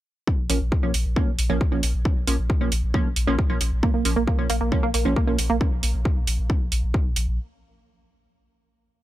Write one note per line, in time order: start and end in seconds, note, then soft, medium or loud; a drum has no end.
0.27 kick loud
0.39 0.49 A#1 medium
0.50 0.60 A#1 loud
0.50 0.59 F3 medium
0.50 0.59 A#3 medium
0.50 0.59 C#4 medium
0.50 open hi-hat loud
0.61 0.72 A#1 medium
0.72 kick loud
0.83 0.93 A#1 medium
0.83 0.92 F3 medium
0.83 0.92 A#3 medium
0.83 0.92 C#4 medium
0.94 1.05 A#1 medium
0.94 open hi-hat loud
1.05 1.16 A#1 medium
1.16 1.31 F3 loud
1.16 1.31 A#3 medium
1.16 1.31 C#4 loud
1.16 kick loud
1.27 1.38 A#1 medium
1.39 1.49 A#1 medium
1.39 open hi-hat loud
1.50 1.61 A#1 medium
1.50 1.59 F3 loud
1.50 1.59 A#3 medium
1.50 1.59 C#4 loud
1.61 kick loud
1.72 1.82 A#1 medium
1.72 1.81 F3 medium
1.72 1.81 A#3 medium
1.72 1.81 C#4 medium
1.83 1.93 A#1 loud
1.83 open hi-hat loud
1.94 2.05 A#1 medium
2.05 kick loud
2.16 2.27 A#1 medium
2.27 2.38 A#1 medium
2.27 2.36 F3 medium
2.27 2.36 A#3 medium
2.27 2.36 C#4 medium
2.27 open hi-hat loud
2.39 2.49 A#1 medium
2.50 kick loud
2.61 2.71 A#1 medium
2.61 2.70 F3 medium
2.61 2.70 A#3 medium
2.61 2.70 C#4 medium
2.72 2.82 A#1 loud
2.72 open hi-hat loud
2.83 2.94 A#1 medium
2.94 3.08 F3 medium
2.94 3.08 A#3 medium
2.94 3.08 C#4 loud
2.94 kick loud
3.05 3.16 A#1 medium
3.16 3.27 A#1 medium
3.16 open hi-hat loud
3.27 3.38 A#1 medium
3.27 3.36 F3 loud
3.27 3.36 A#3 medium
3.27 3.36 C#4 loud
3.39 kick loud
3.50 3.60 A#1 medium
3.50 3.59 F3 medium
3.50 3.59 A#3 medium
3.50 3.59 C#4 medium
3.61 3.71 A#1 loud
3.61 open hi-hat loud
3.72 3.83 A#1 medium
3.83 3.90 A#3 loud
3.83 kick loud
3.94 4.05 A#1 medium
3.94 4.04 A#3 medium
4.05 4.16 A#1 loud
4.05 4.14 F3 medium
4.05 4.14 A#3 medium
4.05 4.14 C#4 medium
4.05 open hi-hat loud
4.16 4.27 A#1 medium
4.16 4.23 A#3 loud
4.27 4.38 A#3 medium
4.27 kick loud
4.39 4.49 A#1 medium
4.39 4.48 F3 medium
4.39 4.48 A#3 medium
4.39 4.48 C#4 medium
4.50 4.60 A#1 loud
4.50 4.56 A#3 loud
4.50 open hi-hat loud
4.61 4.72 A#1 medium
4.61 4.71 A#3 medium
4.72 4.86 F3 loud
4.72 4.86 A#3 medium
4.72 4.86 C#4 loud
4.72 kick loud
4.83 4.94 A#1 medium
4.83 4.90 A#3 loud
4.94 5.05 A#1 loud
4.94 5.04 A#3 medium
4.94 open hi-hat loud
5.05 5.16 A#1 medium
5.05 5.14 F3 loud
5.05 5.14 A#3 medium
5.05 5.14 C#4 loud
5.16 5.23 A#3 loud
5.16 kick loud
5.27 5.38 A#1 medium
5.27 5.36 F3 medium
5.27 5.36 A#3 medium
5.27 5.38 A#3 medium
5.27 5.36 C#4 medium
5.39 5.49 A#1 loud
5.39 open hi-hat loud
5.50 5.61 A#1 medium
5.50 5.56 A#3 loud
5.61 kick loud
5.72 5.82 A#1 medium
5.83 5.94 A#1 loud
5.83 open hi-hat loud
5.94 6.05 A#1 medium
6.05 kick loud
6.16 6.27 A#1 medium
6.27 6.38 A#1 loud
6.27 open hi-hat loud
6.39 6.49 A#1 medium
6.50 kick loud
6.61 6.71 A#1 medium
6.72 6.82 A#1 medium
6.72 open hi-hat loud
6.83 6.94 A#1 medium
6.94 kick loud
7.05 7.16 A#1 medium
7.16 7.27 A#1 loud
7.16 open hi-hat loud
7.27 7.38 A#1 medium